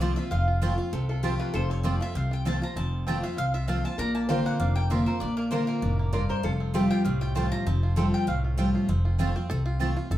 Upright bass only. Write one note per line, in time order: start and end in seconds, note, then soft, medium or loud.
0.00 0.14 C2 medium
0.32 0.75 F1 medium
0.92 1.36 C2 medium
1.54 1.98 F1 loud
2.15 2.59 C2 medium
2.76 3.20 F1 medium
3.37 3.81 C2 medium
3.98 4.42 A#1 medium
4.59 5.04 F1 medium
5.21 5.65 A#1 medium
5.82 6.26 F1 medium
6.44 6.88 F1 loud
7.05 7.49 C2 medium
7.67 8.10 F1 loud
8.27 8.71 C2 medium
8.88 9.32 F1 medium
9.49 9.93 C2 medium
10.10 10.18 F1 medium